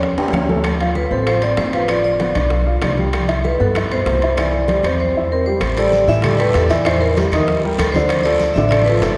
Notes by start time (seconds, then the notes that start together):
Already playing: D#2 C#4 C#5
0.02 high bongo, high conga
0.17 D#2 G4 G5, high conga, high timbale
0.28 D2, low timbale
0.33 C#4 C#5, high bongo, low bongo, high conga, claves
0.39 low timbale
0.49 A3 A4, high bongo, high conga, low timbale
0.64 high bongo, high conga, high timbale, claves
0.79 F4 F5, high conga, high timbale
0.95 B4, high bongo, high conga
1.11 A1 C4 A4 C5, high conga
1.27 F4 C5 F5, high bongo, high conga, high timbale, claves
1.42 C4 C5 D5, high conga, high timbale
1.57 G1 C5, high bongo, low bongo, high conga, high timbale, low timbale
1.73 F4 B4 F5, high conga, high timbale
1.88 F3 F4 D5, high bongo, high conga, high timbale, claves
2.04 D5, high bongo, high conga
2.20 B3 B4, high bongo, high conga, high timbale
2.35 B1 D4 D5, high bongo, high conga, high timbale, claves
2.50 high bongo, high conga
2.66 F4 F5, high conga
2.82 C2 D4 D5, high bongo, low bongo, high conga, high timbale, low timbale, claves
2.98 G3 G4, high bongo, high conga
3.13 high bongo, high conga, high timbale, claves
3.28 E4 E5, high conga, high timbale
3.44 B4, high bongo, high conga
3.60 G2 B3 A4 B4
3.75 E4 E5, high bongo, high conga, high timbale, claves
3.91 B2 C5, high conga, high timbale
4.06 C2, high bongo, low bongo, high conga, high timbale, low timbale
4.22 E4 E5, high conga, high timbale
4.37 E3 E4 D5, high bongo, high conga, high timbale, claves
4.53 high bongo, high conga
4.68 G3 G4, high bongo, high conga, high timbale
4.83 E2 C4 C5, high bongo, high conga, high timbale, claves
5.00 C5
5.17 E4 E5
5.32 C4 A#4 C5
5.46 G3 G4 C5
5.60 A1, high bongo, high conga, high timbale, long guiro, claves
5.77 G3 G4 A4 D5, high conga, high timbale
5.92 high bongo, high conga, short guiro
6.07 A2 E3 E4 E5, high conga, short guiro
6.22 G3 G4 A4 D5, high bongo, high conga, low conga, high timbale, long guiro, claves
6.39 G3 G4 A4 B4, high conga, high timbale
6.54 E2 A4, high bongo, low bongo, high conga, high timbale, short guiro
6.69 E3 E4 D5 E5, high conga, high timbale, short guiro
6.85 E3 E4 C5 E5, high bongo, high conga, high timbale, long guiro, claves
7.01 A#4, high bongo, high conga
7.17 G3 G4 A#4, high bongo, high conga, high timbale, short guiro
7.32 D#2 D#3 D#4 D#5, high bongo, high conga, high timbale, short guiro, claves
7.47 high bongo, high conga, long guiro
7.64 G3 G4 A#4, high conga
7.78 D2 A4, high bongo, low bongo, high conga, high timbale, short guiro, claves
7.92 D3 D4 C5 D5, high bongo, high conga, short guiro
8.09 high bongo, high conga, high timbale, long guiro, claves
8.24 F3 F4 A4 D5, high conga, high timbale
8.40 high bongo, high conga, short guiro
8.54 A1 D3 D4 E5, high conga, short guiro
8.58 D5
8.69 F3 F4 A4 D5, high bongo, high conga, low conga, high timbale, long guiro, claves
8.85 F3 B4, high conga, high timbale
8.89 F4 A4
9.00 G1 A4, high bongo, low bongo, high conga, high timbale, low timbale, short guiro